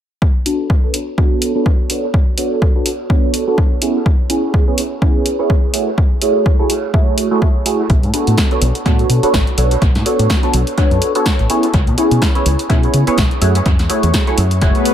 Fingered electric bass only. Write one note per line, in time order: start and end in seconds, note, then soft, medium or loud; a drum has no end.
7.90 8.04 B1 medium
8.03 8.10 A2 medium
8.27 8.34 A2 medium
8.62 8.71 B1 medium
8.86 9.03 A2 medium
9.09 9.19 B2 medium
9.23 muted fingered electric bass stroke soft
9.34 9.43 A1 medium
9.58 9.75 B1 medium
9.82 9.97 B1 medium
9.95 10.02 A2 medium
10.19 10.26 A2 medium
10.54 10.63 B1 medium
10.91 10.98 F#2 medium
11.39 11.46 A1 medium
11.74 11.89 C#2 medium
11.87 11.94 B2 medium
12.11 12.18 B2 medium
12.46 12.55 C#2 medium
12.70 12.87 B2 medium
12.94 13.03 C#3 medium
13.07 muted fingered electric bass stroke soft
13.18 13.27 B1 medium
13.42 13.59 F#2 medium
13.66 13.79 F#2 medium
13.79 13.86 E2 medium
14.03 14.10 E2 medium
14.38 14.63 F#2 medium
14.62 14.71 F#1 medium